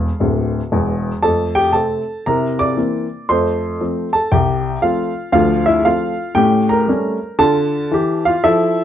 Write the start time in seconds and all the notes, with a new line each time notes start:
Already playing: A4 F5
0.20 D1 D2
0.72 E1 E2
1.22 F2 A3 A4 A5
1.55 G4 G5
1.73 C3 A3 C4 A4 A5
2.26 C3 E4 A#4 A#5
2.59 D5 D6
2.77 E3 A#3 C4
3.29 F2 A3 C5 C6
3.81 F3 A3 C4
4.13 A4 A5
4.32 C2 G4 G5
4.82 F3 A3 C4 F4 F5
5.32 D2 F3 F4 F5
5.66 E4 E5
5.84 F3 A3 C4 F4 F5
6.35 A2 C#4 G4 G5
6.69 A#4 A#5
6.88 G3 A3 C#4
7.39 D3 F4 A4 A5
7.91 E3 G4
8.25 F4 F5
8.44 F3 E4 A4 E5